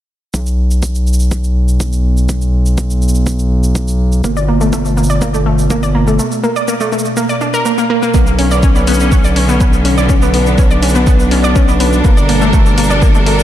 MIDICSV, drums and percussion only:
0, 0, Header, 1, 2, 480
1, 0, Start_track
1, 0, Key_signature, 2, "minor"
1, 0, Tempo, 487805
1, 333, Time_signature, 4, 2, 24, 8
1, 13215, End_track
2, 0, Start_track
2, 0, Title_t, "Drums"
2, 332, Note_on_c, 9, 82, 66
2, 333, Note_on_c, 9, 36, 115
2, 431, Note_off_c, 9, 36, 0
2, 431, Note_off_c, 9, 82, 0
2, 456, Note_on_c, 9, 82, 42
2, 555, Note_off_c, 9, 82, 0
2, 696, Note_on_c, 9, 82, 42
2, 795, Note_off_c, 9, 82, 0
2, 812, Note_on_c, 9, 82, 67
2, 813, Note_on_c, 9, 36, 111
2, 911, Note_off_c, 9, 36, 0
2, 911, Note_off_c, 9, 82, 0
2, 936, Note_on_c, 9, 82, 45
2, 1035, Note_off_c, 9, 82, 0
2, 1052, Note_on_c, 9, 82, 41
2, 1114, Note_off_c, 9, 82, 0
2, 1114, Note_on_c, 9, 82, 53
2, 1176, Note_off_c, 9, 82, 0
2, 1176, Note_on_c, 9, 82, 43
2, 1275, Note_off_c, 9, 82, 0
2, 1292, Note_on_c, 9, 82, 67
2, 1293, Note_on_c, 9, 36, 109
2, 1390, Note_off_c, 9, 82, 0
2, 1391, Note_off_c, 9, 36, 0
2, 1416, Note_on_c, 9, 82, 42
2, 1514, Note_off_c, 9, 82, 0
2, 1656, Note_on_c, 9, 82, 44
2, 1755, Note_off_c, 9, 82, 0
2, 1772, Note_on_c, 9, 82, 68
2, 1773, Note_on_c, 9, 36, 112
2, 1870, Note_off_c, 9, 82, 0
2, 1871, Note_off_c, 9, 36, 0
2, 1896, Note_on_c, 9, 82, 42
2, 1994, Note_off_c, 9, 82, 0
2, 2136, Note_on_c, 9, 82, 42
2, 2234, Note_off_c, 9, 82, 0
2, 2252, Note_on_c, 9, 82, 65
2, 2253, Note_on_c, 9, 36, 120
2, 2350, Note_off_c, 9, 82, 0
2, 2351, Note_off_c, 9, 36, 0
2, 2376, Note_on_c, 9, 82, 42
2, 2475, Note_off_c, 9, 82, 0
2, 2616, Note_on_c, 9, 82, 42
2, 2714, Note_off_c, 9, 82, 0
2, 2732, Note_on_c, 9, 82, 66
2, 2733, Note_on_c, 9, 36, 116
2, 2830, Note_off_c, 9, 82, 0
2, 2831, Note_off_c, 9, 36, 0
2, 2856, Note_on_c, 9, 82, 45
2, 2954, Note_off_c, 9, 82, 0
2, 2972, Note_on_c, 9, 82, 41
2, 3034, Note_off_c, 9, 82, 0
2, 3034, Note_on_c, 9, 82, 54
2, 3096, Note_off_c, 9, 82, 0
2, 3096, Note_on_c, 9, 82, 43
2, 3194, Note_off_c, 9, 82, 0
2, 3212, Note_on_c, 9, 82, 66
2, 3213, Note_on_c, 9, 36, 116
2, 3310, Note_off_c, 9, 82, 0
2, 3311, Note_off_c, 9, 36, 0
2, 3336, Note_on_c, 9, 82, 42
2, 3435, Note_off_c, 9, 82, 0
2, 3576, Note_on_c, 9, 82, 45
2, 3675, Note_off_c, 9, 82, 0
2, 3692, Note_on_c, 9, 82, 65
2, 3693, Note_on_c, 9, 36, 118
2, 3791, Note_off_c, 9, 36, 0
2, 3791, Note_off_c, 9, 82, 0
2, 3816, Note_on_c, 9, 82, 42
2, 3915, Note_off_c, 9, 82, 0
2, 4056, Note_on_c, 9, 82, 41
2, 4155, Note_off_c, 9, 82, 0
2, 4172, Note_on_c, 9, 82, 62
2, 4173, Note_on_c, 9, 36, 121
2, 4270, Note_off_c, 9, 82, 0
2, 4271, Note_off_c, 9, 36, 0
2, 4296, Note_on_c, 9, 82, 42
2, 4395, Note_off_c, 9, 82, 0
2, 4536, Note_on_c, 9, 82, 41
2, 4635, Note_off_c, 9, 82, 0
2, 4652, Note_on_c, 9, 82, 63
2, 4653, Note_on_c, 9, 36, 115
2, 4750, Note_off_c, 9, 82, 0
2, 4751, Note_off_c, 9, 36, 0
2, 4776, Note_on_c, 9, 82, 43
2, 4874, Note_off_c, 9, 82, 0
2, 4892, Note_on_c, 9, 82, 42
2, 4954, Note_off_c, 9, 82, 0
2, 4954, Note_on_c, 9, 82, 53
2, 5017, Note_off_c, 9, 82, 0
2, 5017, Note_on_c, 9, 82, 40
2, 5115, Note_off_c, 9, 82, 0
2, 5132, Note_on_c, 9, 82, 65
2, 5133, Note_on_c, 9, 36, 116
2, 5231, Note_off_c, 9, 36, 0
2, 5231, Note_off_c, 9, 82, 0
2, 5257, Note_on_c, 9, 82, 44
2, 5355, Note_off_c, 9, 82, 0
2, 5497, Note_on_c, 9, 82, 43
2, 5595, Note_off_c, 9, 82, 0
2, 5612, Note_on_c, 9, 82, 64
2, 5613, Note_on_c, 9, 36, 123
2, 5711, Note_off_c, 9, 36, 0
2, 5711, Note_off_c, 9, 82, 0
2, 5737, Note_on_c, 9, 82, 40
2, 5835, Note_off_c, 9, 82, 0
2, 5976, Note_on_c, 9, 82, 41
2, 6075, Note_off_c, 9, 82, 0
2, 6092, Note_on_c, 9, 82, 63
2, 6191, Note_off_c, 9, 82, 0
2, 6217, Note_on_c, 9, 82, 41
2, 6315, Note_off_c, 9, 82, 0
2, 6332, Note_on_c, 9, 82, 28
2, 6431, Note_off_c, 9, 82, 0
2, 6457, Note_on_c, 9, 82, 41
2, 6555, Note_off_c, 9, 82, 0
2, 6572, Note_on_c, 9, 82, 63
2, 6671, Note_off_c, 9, 82, 0
2, 6696, Note_on_c, 9, 82, 41
2, 6795, Note_off_c, 9, 82, 0
2, 6812, Note_on_c, 9, 82, 38
2, 6874, Note_off_c, 9, 82, 0
2, 6874, Note_on_c, 9, 82, 53
2, 6936, Note_off_c, 9, 82, 0
2, 6936, Note_on_c, 9, 82, 41
2, 7035, Note_off_c, 9, 82, 0
2, 7052, Note_on_c, 9, 82, 62
2, 7151, Note_off_c, 9, 82, 0
2, 7176, Note_on_c, 9, 82, 39
2, 7275, Note_off_c, 9, 82, 0
2, 7292, Note_on_c, 9, 82, 28
2, 7390, Note_off_c, 9, 82, 0
2, 7416, Note_on_c, 9, 82, 43
2, 7515, Note_off_c, 9, 82, 0
2, 7532, Note_on_c, 9, 82, 63
2, 7631, Note_off_c, 9, 82, 0
2, 7657, Note_on_c, 9, 82, 39
2, 7755, Note_off_c, 9, 82, 0
2, 7896, Note_on_c, 9, 82, 40
2, 7995, Note_off_c, 9, 82, 0
2, 8012, Note_on_c, 9, 82, 71
2, 8013, Note_on_c, 9, 36, 114
2, 8110, Note_off_c, 9, 82, 0
2, 8111, Note_off_c, 9, 36, 0
2, 8136, Note_on_c, 9, 82, 48
2, 8235, Note_off_c, 9, 82, 0
2, 8252, Note_on_c, 9, 46, 105
2, 8350, Note_off_c, 9, 46, 0
2, 8376, Note_on_c, 9, 82, 47
2, 8475, Note_off_c, 9, 82, 0
2, 8492, Note_on_c, 9, 82, 69
2, 8493, Note_on_c, 9, 36, 120
2, 8590, Note_off_c, 9, 82, 0
2, 8591, Note_off_c, 9, 36, 0
2, 8616, Note_on_c, 9, 82, 45
2, 8714, Note_off_c, 9, 82, 0
2, 8732, Note_on_c, 9, 46, 106
2, 8732, Note_on_c, 9, 82, 43
2, 8794, Note_off_c, 9, 82, 0
2, 8794, Note_on_c, 9, 82, 57
2, 8830, Note_off_c, 9, 46, 0
2, 8856, Note_off_c, 9, 82, 0
2, 8856, Note_on_c, 9, 82, 44
2, 8954, Note_off_c, 9, 82, 0
2, 8972, Note_on_c, 9, 82, 65
2, 8973, Note_on_c, 9, 36, 115
2, 9070, Note_off_c, 9, 82, 0
2, 9071, Note_off_c, 9, 36, 0
2, 9096, Note_on_c, 9, 82, 46
2, 9194, Note_off_c, 9, 82, 0
2, 9211, Note_on_c, 9, 46, 107
2, 9310, Note_off_c, 9, 46, 0
2, 9336, Note_on_c, 9, 82, 49
2, 9434, Note_off_c, 9, 82, 0
2, 9452, Note_on_c, 9, 82, 65
2, 9453, Note_on_c, 9, 36, 116
2, 9550, Note_off_c, 9, 82, 0
2, 9551, Note_off_c, 9, 36, 0
2, 9576, Note_on_c, 9, 82, 42
2, 9674, Note_off_c, 9, 82, 0
2, 9692, Note_on_c, 9, 46, 97
2, 9790, Note_off_c, 9, 46, 0
2, 9816, Note_on_c, 9, 82, 46
2, 9914, Note_off_c, 9, 82, 0
2, 9932, Note_on_c, 9, 82, 70
2, 9933, Note_on_c, 9, 36, 127
2, 10030, Note_off_c, 9, 82, 0
2, 10031, Note_off_c, 9, 36, 0
2, 10056, Note_on_c, 9, 82, 47
2, 10155, Note_off_c, 9, 82, 0
2, 10172, Note_on_c, 9, 46, 109
2, 10270, Note_off_c, 9, 46, 0
2, 10296, Note_on_c, 9, 82, 42
2, 10394, Note_off_c, 9, 82, 0
2, 10412, Note_on_c, 9, 82, 69
2, 10413, Note_on_c, 9, 36, 126
2, 10510, Note_off_c, 9, 82, 0
2, 10511, Note_off_c, 9, 36, 0
2, 10536, Note_on_c, 9, 82, 45
2, 10635, Note_off_c, 9, 82, 0
2, 10652, Note_on_c, 9, 46, 106
2, 10652, Note_on_c, 9, 82, 42
2, 10714, Note_off_c, 9, 82, 0
2, 10714, Note_on_c, 9, 82, 58
2, 10750, Note_off_c, 9, 46, 0
2, 10776, Note_off_c, 9, 82, 0
2, 10776, Note_on_c, 9, 82, 45
2, 10875, Note_off_c, 9, 82, 0
2, 10892, Note_on_c, 9, 82, 66
2, 10893, Note_on_c, 9, 36, 120
2, 10990, Note_off_c, 9, 82, 0
2, 10991, Note_off_c, 9, 36, 0
2, 11016, Note_on_c, 9, 82, 43
2, 11115, Note_off_c, 9, 82, 0
2, 11132, Note_on_c, 9, 46, 102
2, 11230, Note_off_c, 9, 46, 0
2, 11256, Note_on_c, 9, 82, 45
2, 11355, Note_off_c, 9, 82, 0
2, 11372, Note_on_c, 9, 82, 62
2, 11373, Note_on_c, 9, 36, 121
2, 11471, Note_off_c, 9, 36, 0
2, 11471, Note_off_c, 9, 82, 0
2, 11497, Note_on_c, 9, 82, 44
2, 11595, Note_off_c, 9, 82, 0
2, 11613, Note_on_c, 9, 46, 112
2, 11711, Note_off_c, 9, 46, 0
2, 11737, Note_on_c, 9, 82, 43
2, 11835, Note_off_c, 9, 82, 0
2, 11853, Note_on_c, 9, 36, 127
2, 11853, Note_on_c, 9, 82, 64
2, 11951, Note_off_c, 9, 36, 0
2, 11951, Note_off_c, 9, 82, 0
2, 11977, Note_on_c, 9, 82, 44
2, 12075, Note_off_c, 9, 82, 0
2, 12092, Note_on_c, 9, 46, 106
2, 12191, Note_off_c, 9, 46, 0
2, 12217, Note_on_c, 9, 82, 43
2, 12315, Note_off_c, 9, 82, 0
2, 12332, Note_on_c, 9, 82, 64
2, 12333, Note_on_c, 9, 36, 118
2, 12431, Note_off_c, 9, 36, 0
2, 12431, Note_off_c, 9, 82, 0
2, 12457, Note_on_c, 9, 82, 44
2, 12555, Note_off_c, 9, 82, 0
2, 12572, Note_on_c, 9, 46, 112
2, 12572, Note_on_c, 9, 82, 41
2, 12634, Note_off_c, 9, 82, 0
2, 12634, Note_on_c, 9, 82, 56
2, 12671, Note_off_c, 9, 46, 0
2, 12697, Note_off_c, 9, 82, 0
2, 12697, Note_on_c, 9, 82, 44
2, 12795, Note_off_c, 9, 82, 0
2, 12812, Note_on_c, 9, 82, 61
2, 12813, Note_on_c, 9, 36, 126
2, 12911, Note_off_c, 9, 36, 0
2, 12911, Note_off_c, 9, 82, 0
2, 12937, Note_on_c, 9, 82, 43
2, 13035, Note_off_c, 9, 82, 0
2, 13052, Note_on_c, 9, 46, 107
2, 13151, Note_off_c, 9, 46, 0
2, 13177, Note_on_c, 9, 82, 47
2, 13215, Note_off_c, 9, 82, 0
2, 13215, End_track
0, 0, End_of_file